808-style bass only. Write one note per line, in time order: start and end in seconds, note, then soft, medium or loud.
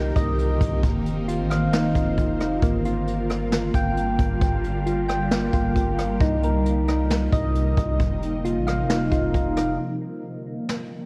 0.00 0.12 C2 loud
0.16 0.59 C2 loud
0.61 0.82 C2 loud
0.83 1.41 F1 loud
1.39 1.69 A1 loud
1.67 1.94 F1 loud
1.95 2.17 F1 loud
2.18 2.61 F1 loud
2.62 3.70 G1 loud
3.74 4.17 G1 loud
4.19 4.41 G1 loud
4.41 5.49 G1 loud
5.53 5.75 G1 loud
5.76 6.19 G1 loud
6.21 7.28 C2 loud
7.33 7.76 C2 loud
7.77 7.99 C2 loud
8.00 8.57 F1 loud
8.56 8.85 A1 loud
8.84 9.10 F1 loud
9.12 9.33 F1 loud
9.34 9.77 F1 loud